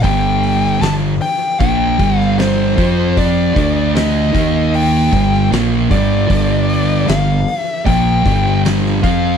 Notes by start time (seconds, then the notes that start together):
0.03 G1 G2 D3 G3 G5, kick, open hi-hat
0.43 open hi-hat
0.81 G1 G2 D3 A5, snare, open hi-hat
1.21 G5, open hi-hat
1.60 A#1 A#2 F3 A#3 G5, kick, open hi-hat
1.99 G1 G2 D3 G3, kick, open hi-hat
2.19 F5, snare
2.39 C5, snare, open hi-hat
2.77 F2 F3 C4 F4, kick, open hi-hat
3.17 D5, kick, open hi-hat
3.55 D2 D3 A3 D4, kick, open hi-hat
3.95 D#5, snare, open hi-hat
4.33 D#2 D#3 A#3 D#4, kick, open hi-hat
4.74 G5, open hi-hat
5.12 G1 G2 D3 G3, kick, open hi-hat
5.34 snare
5.51 A#1 A#2 F3 A#3, snare, open hi-hat
5.90 G1 G2 D3 G3 D5, kick, open hi-hat
6.29 G1 G2 D3 G3, kick, open hi-hat
6.69 open hi-hat
7.08 G1 G2 D3 F5, snare, open hi-hat
7.48 open hi-hat
7.60 E5
7.86 A#1 A#2 F3 A#3 G5, kick, open hi-hat
8.25 G1 G2 D3 G3, kick, open hi-hat
8.65 snare, open hi-hat
8.86 snare
9.04 F2 F3 C4 F4 F5, kick, open hi-hat